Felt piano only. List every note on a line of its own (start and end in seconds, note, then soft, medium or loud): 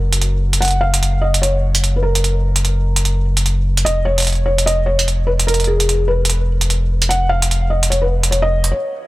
0.61 0.82 F#5 loud
0.81 1.23 F5 loud
1.22 1.41 D#5 medium
1.42 1.80 C#5 medium
1.96 2.03 B4 medium
2.03 3.21 A#4 medium
3.85 4.04 D#5 loud
4.05 4.44 C#5 loud
4.46 4.65 C#5 medium
4.66 4.88 D#5 loud
4.86 5.29 C#5 medium
5.27 5.32 B4 medium
5.47 5.69 A#4 medium
5.67 6.06 G#4 medium
6.08 6.46 B4 medium
7.09 7.31 F#5 loud
7.29 7.68 F5 loud
7.70 7.90 D#5 medium
7.90 8.01 C#5 medium
8.02 8.32 B4 medium
8.31 8.42 C#5 medium
8.42 8.70 D#5 loud
8.71 9.07 C#5 medium